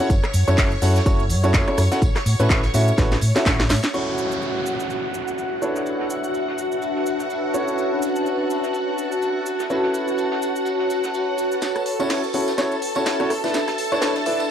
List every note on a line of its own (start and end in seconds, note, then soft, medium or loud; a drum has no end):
0.00 0.11 C#4 medium
0.00 0.11 E4 medium
0.00 0.11 F#4 medium
0.00 0.11 A4 medium
0.00 3.95 C#5 medium
0.00 0.11 F#5 medium
0.00 3.95 C#6 medium
0.10 0.18 F#1 medium
0.10 kick loud
0.10 closed hi-hat medium
0.10 tambourine loud
0.10 shaker soft
0.24 cross-stick medium
0.24 clap soft
0.24 closed hi-hat soft
0.33 0.42 F#2 medium
0.33 open hi-hat loud
0.33 tambourine medium
0.33 shaker medium
0.48 0.54 F#2 medium
0.48 0.68 C#4 loud
0.48 0.68 E4 medium
0.48 0.68 F#4 medium
0.48 0.68 A4 medium
0.48 0.68 C#5 loud
0.48 closed hi-hat soft
0.48 tambourine soft
0.48 shaker soft
0.58 0.74 F#1 medium
0.58 kick loud
0.58 snare loud
0.58 clap loud
0.58 closed hi-hat medium
0.58 open hi-hat medium
0.58 tambourine soft
0.58 shaker soft
0.72 closed hi-hat soft
0.82 0.98 F#2 medium
0.82 0.96 C#4 medium
0.82 0.96 E4 medium
0.82 0.96 F#4 medium
0.82 0.96 A4 medium
0.82 0.96 F#5 medium
0.82 open hi-hat loud
0.82 tambourine medium
0.82 tambourine loud
0.82 shaker medium
0.95 snare soft
0.95 closed hi-hat soft
0.95 tambourine soft
0.95 shaker soft
1.06 1.31 F#1 medium
1.06 1.20 C#4 medium
1.06 1.21 E4 medium
1.06 1.20 F#4 medium
1.06 1.21 A4 medium
1.06 1.20 C#5 loud
1.06 kick loud
1.06 closed hi-hat medium
1.06 tambourine soft
1.06 tambourine medium
1.06 shaker soft
1.20 closed hi-hat soft
1.29 1.55 F#2 medium
1.29 open hi-hat loud
1.29 tambourine medium
1.29 shaker medium
1.43 1.64 C#4 medium
1.43 1.64 E4 medium
1.43 1.64 F#4 medium
1.43 1.64 A4 medium
1.43 1.64 C#5 loud
1.43 closed hi-hat soft
1.43 tambourine soft
1.43 shaker soft
1.54 1.62 F#1 medium
1.54 kick loud
1.54 snare loud
1.54 clap loud
1.54 closed hi-hat medium
1.54 tambourine medium
1.54 shaker soft
1.68 1.79 C#4 loud
1.68 1.79 E4 medium
1.68 1.79 F#4 medium
1.68 1.79 A4 medium
1.68 1.79 C#5 loud
1.68 cross-stick medium
1.68 closed hi-hat soft
1.78 1.86 F#2 medium
1.78 cross-stick medium
1.78 open hi-hat loud
1.78 tambourine medium
1.78 shaker medium
1.92 2.01 C#4 medium
1.92 2.01 E4 medium
1.92 2.01 F#4 medium
1.92 2.01 A4 medium
1.92 2.01 F#5 medium
1.92 snare medium
1.92 closed hi-hat soft
1.92 tambourine medium
1.92 shaker soft
2.02 2.10 A1 loud
2.02 kick loud
2.02 closed hi-hat loud
2.02 tambourine medium
2.02 tambourine soft
2.02 shaker soft
2.15 cross-stick medium
2.15 snare soft
2.15 clap soft
2.15 closed hi-hat soft
2.26 2.34 A2 loud
2.26 open hi-hat loud
2.26 tambourine medium
2.26 shaker medium
2.39 2.46 A2 medium
2.39 2.60 C#4 loud
2.39 2.60 E4 medium
2.39 2.60 F#4 medium
2.39 2.60 A4 medium
2.39 2.60 B4 loud
2.39 closed hi-hat soft
2.39 tambourine soft
2.39 shaker soft
2.50 2.66 A1 medium
2.50 kick loud
2.50 snare loud
2.50 clap loud
2.50 closed hi-hat loud
2.50 tambourine medium
2.50 shaker soft
2.63 snare soft
2.63 closed hi-hat soft
2.74 2.90 A2 medium
2.74 2.89 C#4 medium
2.74 2.89 E4 medium
2.74 2.88 F#4 medium
2.74 2.88 A4 medium
2.74 2.89 E5 medium
2.74 open hi-hat loud
2.74 tambourine medium
2.74 shaker medium
2.88 closed hi-hat soft
2.88 tambourine soft
2.88 shaker soft
2.98 3.14 A1 loud
2.98 3.13 C#4 medium
2.98 3.13 E4 medium
2.98 3.12 F#4 medium
2.98 3.13 A4 medium
2.98 3.13 B4 loud
2.98 kick loud
2.98 snare medium
2.98 closed hi-hat medium
2.98 tambourine medium
2.98 tambourine soft
2.98 shaker soft
3.11 snare soft
3.11 snare medium
3.11 closed hi-hat soft
3.21 3.30 A2 medium
3.21 open hi-hat loud
3.21 tambourine medium
3.21 shaker medium
3.36 3.44 C#4 loud
3.36 3.44 E4 medium
3.36 3.44 F#4 medium
3.36 3.44 A4 medium
3.36 3.44 E5 loud
3.36 snare medium
3.36 snare soft
3.36 closed hi-hat soft
3.36 tambourine medium
3.36 shaker soft
3.46 3.71 A1 medium
3.46 3.60 C#4 medium
3.46 3.60 E4 medium
3.46 3.60 F#4 medium
3.46 3.60 A4 medium
3.46 3.61 C#5 medium
3.46 kick loud
3.46 snare medium
3.46 snare loud
3.46 clap loud
3.46 closed hi-hat loud
3.46 tambourine soft
3.46 tambourine medium
3.46 shaker soft
3.60 snare medium
3.60 closed hi-hat soft
3.69 3.78 A2 medium
3.69 snare loud
3.69 open hi-hat loud
3.69 tambourine medium
3.69 shaker medium
3.84 snare medium
3.84 closed hi-hat soft
3.84 tambourine medium
3.84 shaker soft
3.94 5.60 C#4 medium
3.94 5.60 E4 medium
3.94 11.63 F#4 medium
3.94 5.60 F#4 medium
3.94 6.40 F#4 medium
3.94 5.60 A4 medium
3.94 5.60 C#5 medium
3.94 11.63 F#5 medium
3.94 crash medium
3.94 downlifter medium
3.94 shaker soft
4.05 10.47 E5 medium
4.18 tambourine medium
4.18 shaker medium
4.32 shaker soft
4.42 open hi-hat medium
4.42 shaker soft
4.55 14.51 A5 medium
4.66 tambourine medium
4.66 shaker medium
4.79 snare soft
4.79 shaker soft
4.90 tambourine medium
4.90 shaker soft
5.14 tambourine medium
5.14 shaker medium
5.28 shaker soft
5.38 tambourine medium
5.38 shaker soft
5.62 7.51 D4 medium
5.62 7.54 D4 medium
5.62 7.52 E4 medium
5.62 7.52 A4 medium
5.62 7.52 B4 medium
5.62 7.52 C#5 medium
5.62 tambourine medium
5.62 shaker medium
5.67 8.42 B4 medium
5.76 snare soft
5.76 shaker soft
5.86 tambourine medium
5.86 shaker soft
5.90 8.42 C#5 medium
6.00 snare soft
6.10 tambourine medium
6.10 shaker medium
6.24 shaker soft
6.34 tambourine medium
6.34 shaker soft
6.48 snare soft
6.58 tambourine medium
6.58 shaker medium
6.72 shaker soft
6.82 tambourine medium
6.82 shaker soft
6.96 snare soft
7.06 tambourine medium
7.06 shaker medium
7.19 snare soft
7.19 shaker soft
7.30 tambourine medium
7.30 shaker soft
7.54 9.68 C#4 medium
7.54 9.68 E4 medium
7.54 9.68 F#4 medium
7.54 14.08 F#4 medium
7.54 9.68 A4 medium
7.54 9.68 C#5 medium
7.54 tambourine medium
7.54 shaker medium
7.68 shaker soft
7.78 tambourine medium
7.78 shaker soft
8.02 tambourine medium
8.02 shaker medium
8.16 shaker soft
8.26 open hi-hat medium
8.26 shaker soft
8.50 tambourine medium
8.50 shaker medium
8.64 snare soft
8.64 shaker soft
8.73 tambourine medium
8.73 shaker soft
8.98 tambourine medium
8.98 shaker medium
9.12 shaker soft
9.22 tambourine medium
9.22 shaker soft
9.46 tambourine medium
9.46 shaker medium
9.60 snare soft
9.60 shaker soft
9.70 11.60 C#4 medium
9.70 11.60 E4 medium
9.70 11.60 F#4 medium
9.70 11.60 A4 medium
9.70 11.60 B4 medium
9.70 tambourine medium
9.70 shaker soft
9.76 12.25 C#5 medium
9.83 12.30 B4 medium
9.83 snare soft
9.94 tambourine medium
9.94 shaker medium
10.08 shaker soft
10.18 tambourine medium
10.18 shaker soft
10.32 snare soft
10.42 tambourine medium
10.42 shaker medium
10.56 shaker soft
10.65 tambourine medium
10.65 shaker soft
10.80 snare soft
10.90 tambourine medium
10.90 shaker medium
11.04 snare soft
11.04 shaker soft
11.14 tambourine medium
11.14 shaker soft
11.38 tambourine medium
11.38 shaker medium
11.52 shaker soft
11.62 14.51 A4 medium
11.62 14.51 A5 medium
11.62 snare soft
11.62 closed hi-hat medium
11.62 tambourine medium
11.67 14.51 E5 medium
11.75 cross-stick medium
11.75 closed hi-hat soft
11.75 tambourine soft
11.86 open hi-hat loud
11.86 tambourine medium
12.00 12.20 C#4 medium
12.00 12.20 E4 medium
12.00 12.20 F#4 medium
12.00 12.20 A4 medium
12.00 12.20 C#5 loud
12.00 closed hi-hat soft
12.00 tambourine medium
12.10 snare loud
12.10 snare soft
12.10 closed hi-hat medium
12.10 open hi-hat medium
12.10 tambourine medium
12.24 closed hi-hat soft
12.24 tambourine soft
12.33 12.49 C#4 medium
12.33 12.48 E4 medium
12.33 12.49 F#4 medium
12.33 12.49 A4 medium
12.33 12.49 F#5 medium
12.33 open hi-hat loud
12.33 tambourine medium
12.48 snare soft
12.48 closed hi-hat soft
12.48 tambourine medium
12.58 12.73 C#4 medium
12.58 12.73 E4 medium
12.58 12.73 F#4 medium
12.58 12.73 A4 medium
12.58 12.72 C#5 loud
12.58 snare medium
12.58 closed hi-hat medium
12.58 tambourine medium
12.72 closed hi-hat soft
12.72 tambourine soft
12.82 open hi-hat loud
12.82 tambourine medium
12.95 13.16 C#4 medium
12.95 13.16 E4 medium
12.95 13.16 F#4 medium
12.95 13.16 A4 medium
12.95 13.16 C#5 loud
12.95 closed hi-hat soft
12.95 tambourine medium
13.06 snare medium
13.06 snare loud
13.06 closed hi-hat medium
13.06 tambourine medium
13.19 13.29 C#4 medium
13.19 13.29 E4 medium
13.19 13.29 F#4 medium
13.19 13.29 A4 medium
13.19 13.29 C#5 loud
13.19 cross-stick medium
13.19 closed hi-hat soft
13.19 tambourine soft
13.30 14.51 D4 medium
13.30 cross-stick medium
13.30 open hi-hat loud
13.30 tambourine medium
13.35 14.51 B4 medium
13.40 13.55 D4 medium
13.40 13.55 E4 medium
13.40 13.55 A4 medium
13.40 13.55 B4 medium
13.40 14.51 C#5 medium
13.40 13.55 E5 medium
13.40 closed hi-hat soft
13.40 tambourine medium
13.45 snare soft
13.54 snare medium
13.54 closed hi-hat medium
13.54 tambourine medium
13.67 cross-stick medium
13.67 snare soft
13.67 closed hi-hat soft
13.67 tambourine soft
13.78 open hi-hat loud
13.78 tambourine medium
13.92 14.12 D4 medium
13.92 14.12 E4 medium
13.92 14.12 A4 medium
13.92 14.12 B4 medium
13.92 14.12 C#5 loud
13.92 closed hi-hat soft
13.92 tambourine medium
14.01 snare loud
14.01 snare medium
14.01 closed hi-hat medium
14.01 tambourine medium
14.15 snare soft
14.15 closed hi-hat soft
14.15 tambourine soft
14.25 14.41 D4 medium
14.25 14.41 E4 medium
14.25 14.41 A4 medium
14.25 14.41 B4 medium
14.25 14.41 E5 medium
14.25 open hi-hat loud
14.25 tambourine medium
14.40 closed hi-hat soft
14.40 tambourine medium